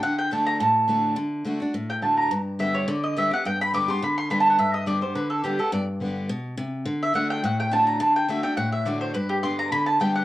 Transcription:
<<
  \new Staff \with { instrumentName = "Mandolin" } { \time 4/4 \key g \major \tempo 4 = 211 fis''8 g''8 a''8 bes''8 a''2 | r2 r8 g''8 a''8 bes''8 | r4 e''8 cis''8 d''8 ees''8 e''8 fis''8 | g''8 b''8 d'''8 c'''8 b''8 c'''8 \tuplet 3/2 { b''8 a''8 fis''8 } |
e''8 ees''8 d''8 c''8 b'8 a'8 g'8 a'8 | d''8 r2. r8 | r8 e''8 fis''8 g''8 fis''8 g''8 a''8 bes''8 | a''8 g''8 e''8 g''8 fis''8 e''8 d''8 c''8 |
b'8 g'8 c'''8 bes''8 b''8 a''8 g''8 fis''8 | }
  \new Staff \with { instrumentName = "Steel-string acoustic guitar" } { \time 4/4 \key g \major << { r4 <d a d' fis'>4 r4 <d a d' fis'>4 | r4 <d a d' fis'>8 <d' fis'>8 r4 <d a d' fis'>4 | r4 <d g b g'>4 r4 <d g b g'>8 <b g'>8 | r4 <d g b g'>8 <b g'>8 r4 <d g b g'>4 |
r4 <d g b g'>8 <b g'>8 r4 <d g b g'>8 <b g'>8 | r4 <d g b g'>4 r2 | r4 <d a d' fis'>4 r4 <d a d' fis'>4 | r4 <d a d' fis'>8 <d' fis'>8 r4 <d a d' fis'>4 |
r4 <d g b g'>4 r4 <d g b g'>4 | } \\ { d2 a,2 | d2 a,2 | g,2 d2 | g,2 d2 |
g,2 d2 | g,2 b,4 c4 | d2 a,2 | d2 a,2 |
g,2 d2 | } >> }
>>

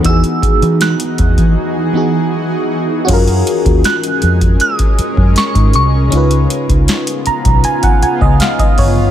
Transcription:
<<
  \new Staff \with { instrumentName = "Synth bell" } { \time 4/4 \key fis \major \tempo 4 = 79 e'''4 fis'''4 r2 | r4 fis'''4 dis'''4 cis'''8 cis'''8~ | cis'''4. r2 r8 | }
  \new Staff \with { instrumentName = "FM electric piano" } { \time 4/4 \key fis \major << { r1 | r1 | r4. ais''8 gis''16 fis''16 gis''16 dis''16 eis''16 dis''16 cis''8 | } \\ { <e b dis' fis' gis'>2~ <e b dis' fis' gis'>8 <e b dis' fis' gis'>4. | <cis' eis' fis' gis' ais'>1 | <cis cis' dis' eis' b'>1 | } >> }
  \new Staff \with { instrumentName = "Ambient pad" } { \time 4/4 \key fis \major <e dis' fis' gis'>1 | <gis cis' gis' ais'>1 | <cis b eis'>1 | }
  \new Staff \with { instrumentName = "Fingered electric bass" } { \clef bass \time 4/4 \key fis \major e,16 r8 e8 r16 e,16 e16 r2 | fis,8 r16 dis,16 r8 eis,8 r8. fis,16 r16 gis,16 bis,,8 | cis,8 r16 cis,16 r8. b,,16 r8. cis,16 r8 g,,8 | }
  \new DrumStaff \with { instrumentName = "Drums" } \drummode { \time 4/4 <hh bd>16 hh16 <hh bd>16 hh16 <hh sn>16 hh16 <hh bd>16 <hh bd>16 r4 r4 | <cymc hh bd>16 hh16 hh16 <hh bd>16 <hh sn>16 hh16 hh16 <hh bd>16 hh16 <hh bd>16 hh16 bd16 <hh sn>16 <hh bd>16 hh8 | hh16 hh16 hh16 <hh bd>16 <hh sn>16 hh16 hh16 <hh bd>16 hh16 <hh bd>16 hh16 bd16 <hh sn>16 <hh bd>16 <hho bd>8 | }
>>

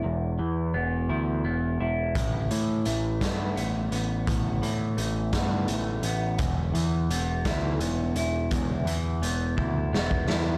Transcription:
<<
  \new Staff \with { instrumentName = "Clean electric guitar" } { \time 6/8 \key e \dorian \tempo 4. = 57 <e, b e'>8 e8 b8 e'8 b8 e'8 | a,8 e8 a8 b8 a8 b8 | a,8 e8 a8 b8 a8 b8 | e,8 e8 b8 e'8 b8 e'8 |
e,8 e8 b8 e'8 b8 e'8 | }
  \new Staff \with { instrumentName = "Picked electric bass" } { \clef bass \time 6/8 \key e \dorian e,,8 e,8 e,,8 d,8 e,,8 e,,8 | a,,8 a,8 a,,8 g,8 a,,8 a,,8 | a,,8 a,8 a,,8 g,8 a,,8 a,,8 | e,,8 e,8 e,,8 d,8 e,,8 e,,8 |
e,,8 e,8 e,,8 d,8 e,,8 e,8 | }
  \new DrumStaff \with { instrumentName = "Drums" } \drummode { \time 6/8 r4. r4. | <hh bd>8 hh8 hh8 <hh bd sn>8 hh8 hh8 | <hh bd>8 hh8 hh8 <hh bd sn>8 hh8 hh8 | <hh bd>8 hh8 hh8 <hh bd sn>8 hh8 hh8 |
<hh bd>8 hh8 hh8 bd8 sn16 bd16 sn8 | }
>>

